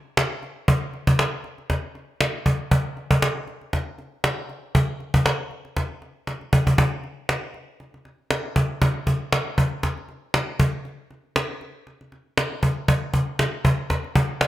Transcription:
0.17 cajon slap loud
0.43 cajon slap soft
0.68 cajon bass loud
0.94 cajon slap soft
1.07 cajon bass loud
1.19 cajon slap loud
1.44 cajon slap soft
1.58 cajon slap soft
1.70 cajon bass medium
1.70 cajon slap medium
1.95 cajon slap soft
2.21 cajon slap loud
2.46 cajon bass medium
2.71 cajon bass loud
2.97 cajon slap soft
3.11 cajon bass loud
3.22 cajon slap loud
3.47 cajon slap soft
3.61 cajon slap soft
3.73 cajon bass medium
3.73 cajon slap medium
3.98 cajon slap soft
4.24 cajon slap loud
4.49 cajon slap soft
4.75 cajon bass loud
5.00 cajon slap soft
5.14 cajon bass loud
5.26 cajon slap loud
5.51 cajon slap soft
5.65 cajon slap soft
5.77 cajon bass medium
5.77 cajon slap soft
6.02 cajon slap soft
6.27 cajon slap medium
6.41 cajon slap soft
6.53 cajon bass medium
6.67 cajon bass medium
6.78 cajon bass loud
7.04 cajon slap soft
7.29 cajon slap loud
7.54 cajon slap soft
7.80 cajon slap soft
7.94 cajon slap soft
8.05 cajon slap soft
8.31 cajon slap loud
8.56 cajon bass loud
8.82 cajon bass loud
9.07 cajon bass medium
9.32 cajon slap loud
9.58 cajon bass loud
9.83 cajon bass loud
9.83 cajon slap medium
9.98 cajon slap soft
10.09 cajon slap soft
10.34 cajon slap loud
10.60 cajon bass loud
10.85 cajon slap soft
11.11 cajon slap soft
11.36 cajon slap loud
11.61 cajon slap soft
11.87 cajon slap medium
12.01 cajon slap soft
12.12 cajon slap soft
12.37 cajon slap loud
12.63 cajon bass loud
12.88 cajon bass loud
13.14 cajon bass medium
13.39 cajon slap loud
13.65 cajon bass loud
13.90 cajon bass loud
13.90 cajon slap medium
14.04 cajon slap soft
14.15 cajon bass loud
14.41 cajon slap loud

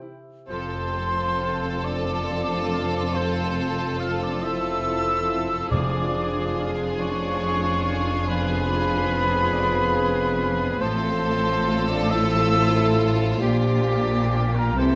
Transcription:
0.00 0.12 C3 soft
0.00 0.53 C3 soft
0.00 0.15 E3 soft
0.00 0.95 C4 soft
0.00 0.16 E4 soft
0.00 0.53 E4 soft
0.00 0.16 G4 soft
0.00 0.53 G4 soft
0.00 1.84 C5 soft
0.00 0.16 G5 soft
0.48 5.67 F1 medium
0.48 5.67 F2 medium
0.48 4.40 F2 medium
0.48 3.10 F3 medium
0.48 5.67 C4 medium
0.48 1.80 C4 medium
0.48 5.67 F4 medium
0.48 3.10 A4 medium
0.48 5.68 A4 medium
0.48 1.86 C5 medium
0.48 1.81 C6 loud
0.97 3.57 C4 medium
1.41 2.71 F4 soft
1.84 3.14 D4 medium
1.84 4.42 C5 soft
1.84 3.17 D5 medium
1.84 3.15 D6 medium
2.29 4.84 A4 soft
2.72 3.99 F4 soft
3.12 5.75 C3 soft
3.12 5.68 F3 medium
3.12 3.99 C4 medium
3.12 5.67 A4 medium
3.12 4.00 C5 medium
3.12 4.00 C6 medium
3.58 5.75 C4 soft
3.99 4.21 F4 medium
3.99 5.27 F4 soft
3.99 4.21 F5 medium
3.99 4.24 F6 medium
4.19 4.42 D4 medium
4.19 4.45 D5 medium
4.19 4.43 D6 medium
4.40 5.69 E4 medium
4.40 5.74 C5 medium
4.40 5.69 E6 medium
4.44 5.71 E5 medium
4.85 5.74 A4 soft
5.28 6.57 F4 soft
5.69 10.76 F1 medium
5.69 9.60 F2 medium
5.69 10.76 F2 medium
5.69 6.96 F2 medium
5.69 7.97 F3 medium
5.69 6.82 D4 medium
5.69 10.77 F4 medium
5.69 7.96 G#4 medium
5.69 10.76 G#4 medium
5.69 6.71 D5 medium
5.69 6.70 D6 medium
5.73 10.78 D4 medium
6.14 8.69 D4 medium
6.58 7.84 F4 soft
6.99 8.25 C#4 medium
6.99 8.24 C#5 medium
6.99 9.52 D5 medium
6.99 8.29 C#6 medium
7.43 9.94 G#4 medium
7.85 9.10 F4 soft
8.27 10.77 F3 medium
8.27 12.18 F3 medium
8.27 10.81 B3 medium
8.27 10.77 G#4 medium
8.27 10.82 B4 medium
8.27 10.82 B5 loud
8.70 10.84 D4 soft
9.11 10.37 F4 medium
9.53 10.84 D5 medium
9.96 10.84 G#4 medium
10.39 11.66 F4 medium
10.79 13.37 A1 medium
10.79 13.38 A2 medium
10.79 13.46 A2 medium
10.79 13.38 F3 medium
10.79 13.38 C4 medium
10.79 11.90 C4 medium
10.79 14.73 F4 medium
10.79 13.42 A4 medium
10.79 13.38 A4 medium
10.79 11.88 C5 medium
10.79 11.89 C6 loud
11.24 13.46 C4 medium
11.68 12.97 F4 soft
11.89 12.10 D4 medium
11.89 12.12 D5 medium
11.89 12.12 D6 medium
12.11 13.42 E4 loud
12.11 13.46 C5 medium
12.11 13.14 E5 loud
12.11 13.14 E6 loud
12.55 13.46 A4 medium
12.98 14.31 F4 medium
13.40 14.74 A#1 medium
13.40 14.75 A#2 medium
13.40 14.81 A#2 medium
13.40 14.47 F3 medium
13.40 14.95 A#3 medium
13.40 14.55 D4 medium
13.40 14.48 G4 medium
13.40 14.74 G4 medium
13.40 14.57 D5 medium
13.40 14.51 D6 medium
13.87 14.95 A#3 soft
14.32 14.81 F4 medium
14.32 14.95 G4 medium
14.54 14.77 A#3 medium
14.54 14.79 A#4 medium
14.54 14.78 A#5 medium
14.76 14.95 C2 medium
14.76 14.95 C3 medium
14.76 14.95 E3 medium
14.76 14.95 C4 medium
14.76 14.95 E4 medium
14.76 14.95 A4 medium
14.76 14.95 C5 medium
14.76 14.95 C6 medium

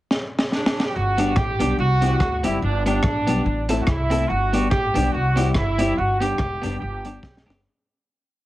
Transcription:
0.11 snare medium
0.39 snare medium
0.52 0.87 D4 medium
0.52 snare medium
0.66 snare loud
0.80 snare medium
0.87 0.94 G4 medium
0.95 1.37 G1 medium
0.95 1.37 F#4 loud
1.18 1.32 G3 medium
1.18 1.31 B3 medium
1.18 1.32 B3 medium
1.18 1.32 D4 medium
1.18 1.32 G4 medium
1.18 closed hi-hat medium
1.36 1.56 A1 medium
1.36 1.78 G4 loud
1.36 kick loud
1.36 cross-stick loud
1.59 1.76 B1 medium
1.59 1.73 G3 medium
1.59 1.73 B3 medium
1.59 1.74 B3 medium
1.59 1.73 D4 medium
1.59 1.74 D4 loud
1.59 1.74 G4 medium
1.59 closed hi-hat medium
1.78 2.14 C2 loud
1.78 2.40 F#4 loud
1.78 muted clean electric guitar stroke soft
2.01 2.15 G3 medium
2.01 2.15 C4 medium
2.01 2.16 C4 medium
2.01 2.16 E4 medium
2.01 2.16 G4 medium
2.01 closed hi-hat medium
2.20 2.40 D2 medium
2.20 kick medium
2.20 cross-stick loud
2.43 2.60 F#1 medium
2.43 2.57 G3 medium
2.43 2.57 C4 medium
2.43 2.58 E4 medium
2.43 2.57 E4 medium
2.43 2.63 E4 medium
2.43 2.58 G4 medium
2.43 closed hi-hat medium
2.62 2.98 G1 loud
2.62 2.85 D4 loud
2.85 2.99 G3 medium
2.85 2.99 B3 medium
2.85 3.66 D4 loud
2.85 3.00 D4 medium
2.85 3.00 G4 medium
2.85 closed hi-hat medium
3.03 3.28 A1 medium
3.03 kick loud
3.03 cross-stick loud
3.27 3.43 B1 medium
3.27 3.41 G3 medium
3.27 3.41 B3 medium
3.27 3.41 D4 medium
3.27 3.42 G4 medium
3.27 closed hi-hat medium
3.45 3.81 A1 loud
3.45 muted clean electric guitar stroke soft
3.69 3.83 A3 medium
3.69 3.83 C4 medium
3.69 3.83 E4 loud
3.69 3.84 E4 loud
3.69 3.83 A4 loud
3.69 closed hi-hat medium
3.81 3.88 F#4 medium
3.87 4.23 C2 medium
3.87 4.30 E4 medium
3.87 muted clean electric guitar stroke soft
3.87 kick loud
3.87 cross-stick loud
4.10 4.25 A3 medium
4.10 4.24 C4 medium
4.10 4.25 C4 medium
4.10 4.25 E4 medium
4.10 4.25 E4 loud
4.10 4.25 A4 loud
4.10 closed hi-hat medium
4.29 4.65 G1 loud
4.29 4.71 F#4 loud
4.53 4.67 G3 medium
4.53 4.66 B3 medium
4.53 4.67 B3 medium
4.53 4.67 D4 medium
4.53 4.67 G4 medium
4.53 closed hi-hat medium
4.70 4.92 A1 medium
4.70 5.10 G4 loud
4.70 kick loud
4.70 cross-stick loud
4.94 5.11 B1 loud
4.94 5.09 G3 medium
4.94 5.08 B3 medium
4.94 5.09 B3 medium
4.94 5.08 D4 medium
4.94 5.09 D4 loud
4.94 5.09 G4 medium
4.94 closed hi-hat medium
5.12 5.50 C2 medium
5.12 5.48 F#4 loud
5.12 muted clean electric guitar stroke soft
5.36 5.50 G3 medium
5.36 5.50 C4 medium
5.36 5.51 C4 medium
5.36 5.50 E4 medium
5.36 5.51 E4 loud
5.36 5.51 G4 medium
5.36 closed hi-hat medium
5.49 5.55 F#4 medium
5.54 5.91 G1 medium
5.54 5.97 E4 medium
5.54 kick medium
5.54 cross-stick loud
5.78 5.93 G3 medium
5.78 5.92 C4 medium
5.78 5.93 C4 medium
5.78 5.92 E4 medium
5.78 5.93 E4 loud
5.78 5.93 G4 medium
5.78 closed hi-hat medium
5.98 6.33 G1 loud
5.98 6.21 F#4 loud
6.20 6.34 G3 medium
6.20 6.34 B3 medium
6.20 6.35 B3 medium
6.20 6.34 D4 medium
6.20 6.35 D4 medium
6.20 6.76 G4 loud
6.20 6.35 G4 loud
6.20 closed hi-hat medium
6.38 6.59 E1 medium
6.38 muted clean electric guitar stroke soft
6.38 kick loud
6.38 cross-stick loud
6.62 6.79 F#1 medium
6.62 6.76 G3 medium
6.62 6.75 B3 medium
6.62 6.76 B3 medium
6.62 6.76 D4 medium
6.62 6.77 D4 loud
6.62 6.76 G4 medium
6.62 closed hi-hat medium
6.80 7.17 G1 medium
6.80 7.42 G4 medium
6.80 muted clean electric guitar stroke soft
7.04 7.18 G3 medium
7.04 7.18 B3 medium
7.04 7.18 D4 loud
7.04 7.18 D4 medium
7.04 7.19 G4 medium
7.04 closed hi-hat medium
7.23 7.43 B1 medium
7.23 muted clean electric guitar stroke soft
7.23 kick medium
7.23 snare medium
7.37 snare medium
7.46 7.63 F#1 medium
7.46 7.60 G3 medium
7.46 7.59 B3 medium
7.46 7.60 B3 medium
7.46 7.59 D4 medium
7.46 7.60 D4 loud
7.46 7.60 G4 medium
7.50 snare loud

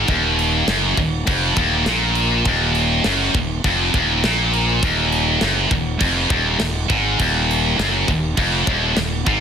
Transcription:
0.08 0.64 D#1 loud
0.08 0.68 D#2 medium
0.08 kick loud
0.08 crash medium
0.39 crash medium
0.68 0.96 F#1 loud
0.68 0.97 F#2 loud
0.68 snare loud
0.68 crash medium
0.97 1.25 D#1 medium
0.97 1.22 D#2 medium
0.97 kick medium
0.97 crash medium
1.27 1.55 F1 medium
1.27 1.56 F2 loud
1.27 kick loud
1.27 crash medium
1.56 1.85 D#1 medium
1.56 1.86 D#2 loud
1.56 kick loud
1.56 crash medium
1.86 2.42 A#1 loud
1.86 2.46 A#2 medium
1.86 snare loud
1.86 crash medium
2.15 crash medium
2.45 3.01 D#1 medium
2.45 3.05 D#2 loud
2.45 kick medium
2.45 crash medium
2.75 crash medium
3.04 3.33 F#1 medium
3.04 3.34 F#2 loud
3.04 snare loud
3.04 crash medium
3.34 3.62 D#1 medium
3.34 3.59 D#2 medium
3.34 kick loud
3.34 crash medium
3.64 3.92 F1 medium
3.64 3.94 F2 loud
3.64 kick loud
3.64 crash medium
3.94 4.22 D#1 medium
3.94 4.24 D#2 loud
3.94 kick loud
3.94 crash medium
4.24 4.79 A#1 loud
4.24 4.83 A#2 medium
4.24 snare loud
4.24 crash medium
4.53 crash medium
4.83 5.38 D#1 medium
4.83 5.42 D#2 medium
4.83 kick loud
4.83 crash medium
5.12 crash medium
5.41 5.70 F#1 medium
5.41 5.71 F#2 loud
5.41 snare loud
5.41 crash medium
5.71 5.99 D#1 medium
5.71 5.96 D#2 medium
5.71 kick medium
5.71 crash medium
6.00 6.29 F1 medium
6.00 6.30 F2 loud
6.00 kick loud
6.00 crash medium
6.30 6.58 D#1 medium
6.30 6.59 D#2 loud
6.30 kick loud
6.30 crash medium
6.60 6.88 D#1 medium
6.60 6.85 D#2 medium
6.60 snare loud
6.60 crash medium
6.90 7.18 G#1 loud
6.90 7.19 G#2 loud
6.90 kick loud
6.90 crash medium
7.20 7.75 D#1 medium
7.20 7.78 D#2 medium
7.20 kick loud
7.20 crash medium
7.51 crash medium
7.79 8.07 F#1 medium
7.79 8.08 F#2 loud
7.79 snare loud
7.79 crash medium
8.08 8.36 D#1 medium
8.08 8.33 D#2 medium
8.08 kick medium
8.08 crash medium
8.37 8.66 F1 medium
8.37 8.67 F2 medium
8.37 kick loud
8.37 crash medium
8.67 8.95 D#1 medium
8.67 8.96 D#2 loud
8.67 kick loud
8.67 crash medium
8.96 9.25 D#1 medium
8.96 9.21 D#2 medium
8.96 snare loud
8.96 crash medium
9.27 9.40 G#1 loud
9.27 9.40 G#2 medium
9.27 kick loud
9.27 crash medium

